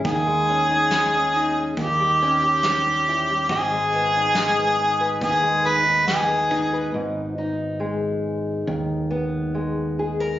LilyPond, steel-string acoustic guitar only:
\new Staff \with { instrumentName = "Steel-string acoustic guitar" } { \time 4/4 \key gis \minor \tempo 4 = 70 << { gis'8 cis'16 dis'8 cis'16 dis'16 gis'16 r8 cis'16 g'8 cis'8. | r8 b16 dis'8 b16 dis'16 b'8. b16 dis'8 b16 dis'16 b'16 | r8 dis'2 b4 gis'16 ais'16 | } \\ { dis16 gis8. gis4 dis16 g8. g8 e16 g16 | gis,16 gis8. gis4 gis,16 gis8. gis4 | gis,4 gis4 dis4 gis4 | } >> }